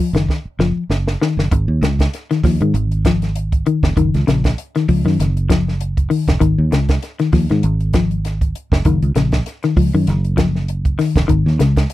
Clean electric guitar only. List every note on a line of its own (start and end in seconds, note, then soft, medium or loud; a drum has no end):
0.00 0.10 F3 medium
0.15 0.38 D#3 medium
0.60 0.83 F3 medium
1.22 1.44 D#3 medium
1.53 muted clean electric guitar stroke loud
1.83 2.05 C#3 medium
2.31 2.41 D#3 medium
2.45 2.57 F3 medium
2.62 2.84 D#3 medium
3.06 3.29 F3 medium
3.67 3.89 D#3 medium
3.97 4.20 D#3 loud
4.27 4.50 C#3 medium
4.76 4.86 D#3 medium
4.89 5.01 F3 medium
5.06 5.28 D#3 medium
5.50 5.72 F3 medium
6.10 6.33 D#3 medium
6.40 6.63 D#3 loud
6.72 6.95 C#3 medium
7.20 7.30 D#3 medium
7.33 7.46 F3 medium
7.51 7.73 D#3 medium
7.95 8.17 F3 medium
8.86 9.08 D#3 loud
9.16 9.39 C#3 medium
9.64 9.74 D#3 medium
9.77 9.89 F3 medium
9.95 10.17 D#3 medium
10.37 10.60 F3 medium
10.99 11.22 D#3 medium
11.28 11.51 D#3 loud
11.59 11.82 C#3 medium